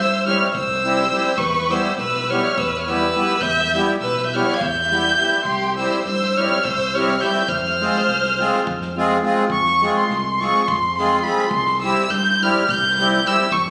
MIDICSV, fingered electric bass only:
0, 0, Header, 1, 2, 480
1, 0, Start_track
1, 0, Tempo, 580833
1, 1140, Time_signature, 7, 3, 24, 8
1, 6419, Tempo, 574713
1, 11374, End_track
2, 0, Start_track
2, 0, Title_t, "Fingered electric bass"
2, 0, Program_c, 0, 33
2, 0, Note_on_c, 0, 43, 87
2, 254, Note_off_c, 0, 43, 0
2, 448, Note_on_c, 0, 36, 92
2, 862, Note_off_c, 0, 36, 0
2, 1142, Note_on_c, 0, 40, 105
2, 1439, Note_off_c, 0, 40, 0
2, 1635, Note_on_c, 0, 35, 84
2, 1932, Note_off_c, 0, 35, 0
2, 2132, Note_on_c, 0, 40, 98
2, 2546, Note_off_c, 0, 40, 0
2, 2816, Note_on_c, 0, 40, 96
2, 3115, Note_off_c, 0, 40, 0
2, 3314, Note_on_c, 0, 35, 86
2, 3612, Note_off_c, 0, 35, 0
2, 3806, Note_on_c, 0, 40, 101
2, 4222, Note_off_c, 0, 40, 0
2, 4505, Note_on_c, 0, 36, 112
2, 4801, Note_off_c, 0, 36, 0
2, 5001, Note_on_c, 0, 43, 99
2, 5296, Note_off_c, 0, 43, 0
2, 5497, Note_on_c, 0, 36, 95
2, 5908, Note_off_c, 0, 36, 0
2, 6186, Note_on_c, 0, 41, 95
2, 6480, Note_off_c, 0, 41, 0
2, 6687, Note_on_c, 0, 36, 79
2, 6982, Note_off_c, 0, 36, 0
2, 7174, Note_on_c, 0, 41, 96
2, 7589, Note_off_c, 0, 41, 0
2, 7865, Note_on_c, 0, 41, 108
2, 8162, Note_off_c, 0, 41, 0
2, 8361, Note_on_c, 0, 36, 108
2, 8657, Note_off_c, 0, 36, 0
2, 8854, Note_on_c, 0, 41, 94
2, 9268, Note_off_c, 0, 41, 0
2, 9543, Note_on_c, 0, 36, 109
2, 9840, Note_off_c, 0, 36, 0
2, 10037, Note_on_c, 0, 43, 98
2, 10333, Note_off_c, 0, 43, 0
2, 10525, Note_on_c, 0, 36, 93
2, 10940, Note_off_c, 0, 36, 0
2, 11225, Note_on_c, 0, 41, 115
2, 11374, Note_off_c, 0, 41, 0
2, 11374, End_track
0, 0, End_of_file